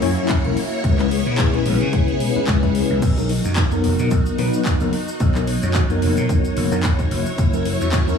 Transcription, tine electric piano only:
0.02 F#3 C#4 E4 C#5
0.44 F#3 C#4 E4 A#4
0.99 G#3 C#4 E4 B4
1.53 G#3 C#4 E4 B4
2.35 G#3 C#4 E4 B4
2.63 G#3 C#4 E4 B4
3.17 F#3 B3 D#4 A#4
3.71 F#3 B3 D#4 A#4
4.38 F#3 B3 D#4 B4
4.81 F#3 B3 D#4 A#4
5.35 F#3 B3 D#4 A#4
5.89 F#3 B3 D#4 A#4
6.71 F#3 B3 D#4 A#4
7.53 F#3 C#4 E4 A#4
8.07 F#3 C#4 E4 A#4

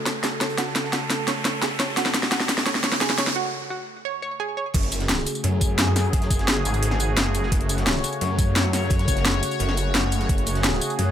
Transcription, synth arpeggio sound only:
0.06 C#5
0.24 G#4
0.41 C#5
0.58 F#4
0.93 F#4
1.28 C#5
1.45 C#5
1.62 G#4
1.80 C#5
1.97 F#4
2.32 F#4
2.66 C#5
2.84 C#5
3.01 G#4
3.18 C#5
3.36 F#4
3.70 F#4
4.05 C#5
4.22 C#5
4.40 G#4
4.57 C#5

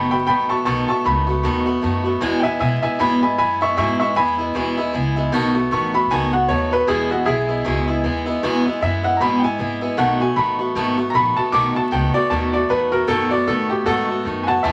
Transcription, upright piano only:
0.11 G5 B5
0.27 G5 B5
0.49 A5 C#6
0.65 A5 C#6
0.89 A5 C#6
1.06 B5
2.40 E5 G5
2.44 G#5
2.60 E5 G#5
2.83 E5 G#5
3.00 G#5 B5
3.22 G#5 B5
3.38 G#5 B5
3.62 E5 C#6
3.78 E5 C#6
4.00 E5 C#6
4.16 G#5 B5
5.72 C#6
5.95 B5
6.11 G#5
6.33 F#5
6.49 C#5
6.73 B4
6.88 G#4
7.11 F#4
7.25 E4 G#4
8.82 E5
9.04 F#5
9.17 A#5
9.21 B5
9.39 G5
9.44 G#5
9.98 F#5
10.21 G#5
10.36 B5
11.10 A#5
11.15 B5
11.37 A5
11.52 D6
11.76 A5
11.92 G5
12.14 D5
12.30 A5
12.54 D5
12.70 B4
12.92 A#4
13.08 A4
13.31 D5
13.48 A4
13.70 G4
13.86 F#4 A4
14.43 F#5 G#5
14.48 A5
14.63 E5 A5

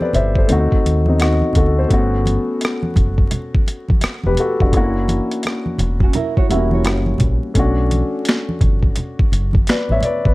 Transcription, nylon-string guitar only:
6.03 C#4 F#4
6.15 E4 A#4
6.37 F#4 C#5
6.50 E4 A#4
6.73 F#4 C#5

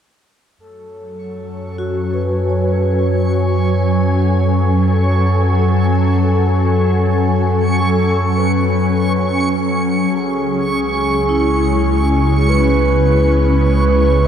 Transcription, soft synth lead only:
0.60 A4
2.63 B4
2.72 A4
2.82 G#4
2.91 A4
3.01 C#5
5.43 F#4
7.80 A4
8.38 B4
10.14 G#4
12.49 B4

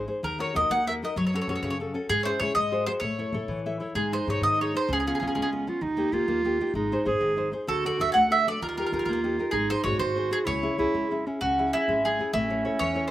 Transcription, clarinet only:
3.95 D#4
4.91 C#4
5.69 F4
5.82 D#4
6.13 F4
6.76 D#4
7.07 G#4
7.68 F#4
8.61 F4
9.53 D#4
9.85 F#4
10.45 E4
10.79 E4
11.27 C#4
11.41 C#4
12.36 C#4

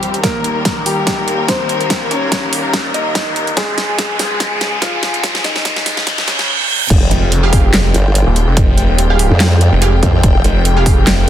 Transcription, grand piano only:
Already playing: G3 G4
0.24 A#3 A#4
0.86 G3 G4
1.48 C4 C5
2.11 C#4 C#5
2.94 D#4 D#5
3.57 G#3 G#4
4.19 G#3 G#4
4.82 F3 F4
5.44 D#3 D#4
6.28 C#3 C#4

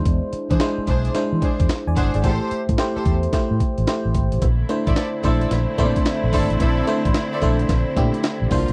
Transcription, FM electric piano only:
Already playing: G#3 D4 E4 C5
0.60 G#3 D4 E4 C5
1.15 G#3 D4 E4 C5
1.87 D5 G#5
1.97 C5 F#5
2.15 G#4 D5
2.24 A3 E4 G4 C5
2.78 A3 E4 G4 C5
3.33 A3 E4 G4 C5
3.87 A3 E4 G4 C5
4.69 A3 D4 E4 C5
5.24 A3 D4 E4 C5
5.78 A3 C4 E4 C5
5.85 D4
6.33 A3 D4 E4 C5
6.87 A3 D4 E4 C5
7.42 A3 D4 E4 C5
7.96 A3 D4 E4 G4
8.51 A#3 D4 E4 C5
8.58 F4

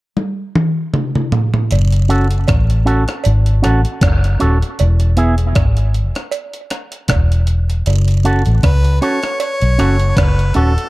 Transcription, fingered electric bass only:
1.72 F#1
2.49 A1
3.26 G#1
3.65 A1
4.02 F#1
4.42 D#1
4.80 E1
5.56 G#1
7.09 E1
7.87 F#1
8.47 A1
8.64 C#2
9.62 B1
9.80 F#1
10.17 F#1
10.56 D#1

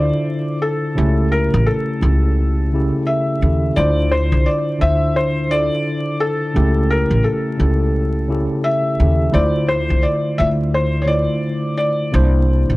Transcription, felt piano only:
Already playing: D5
0.62 A4
1.32 A#4
1.66 A4
3.06 E5
3.76 D5
4.12 C5
4.46 D5
4.81 E5
5.16 C5
5.51 D5
6.20 A4
6.90 A#4
7.24 A4
8.64 E5
9.34 D5
9.68 C5
10.03 D5
10.38 E5
10.74 C5
11.02 C#5
11.08 D5
11.77 D5

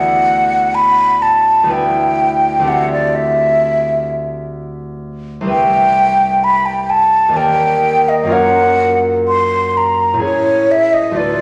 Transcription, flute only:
Already playing: F#5
0.75 B5
1.22 A5
1.71 G5
2.68 F#5
2.92 D5
3.15 E5
5.49 G5
6.44 B5
6.66 G5
6.90 A5
7.37 G5
8.09 D#5
8.33 F#5
9.28 C6
9.77 A#5
10.24 C#5
10.71 E5
10.93 D#5
11.17 D5

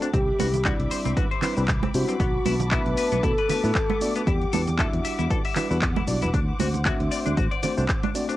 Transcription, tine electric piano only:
0.01 A3 C4 D4 F#4 C5
0.39 G3 C4 D4 E4 B4
0.64 G3 C4 D4 E4 D5
1.16 G3 C4 D4 E4 B4
1.42 G3 C4 D4 E4 B4
1.57 G3 C4 D4 E4 B4
1.94 G3 C4 D4 E4 C5
2.09 G3 C4 D4 E4 B4
2.45 A3 B3 D4 F#4 B4
2.72 A3 B3 D4 F#4 E5
3.24 A3 B3 D4 F#4 B4
3.49 A3 B3 D4 F#4 B4
3.63 A3 B3 D4 F#4 B4
4.01 A3 B3 D4 F#4 D5
4.15 A3 B3 D4 F#4 B4
4.53 G3 D4 E4 F#4 B4
4.78 G3 D4 E4 F#4 E5
5.30 G3 D4 E4 F#4 B4
5.56 G3 D4 E4 F#4 B4
5.70 G3 D4 E4 F#4 B4
6.07 G3 D4 E4 F#4 D5
6.22 G3 D4 E4 F#4 B4
6.59 A3 C4 D4 F#4 C5
6.85 A3 C4 D4 F#4 E5
7.37 A3 C4 D4 F#4 C5
7.63 A3 C4 D4 F#4 C5
7.77 A3 C4 D4 F#4 C5
8.14 A3 C4 D4 F#4 D5
8.29 A3 C4 D4 F#4 C5

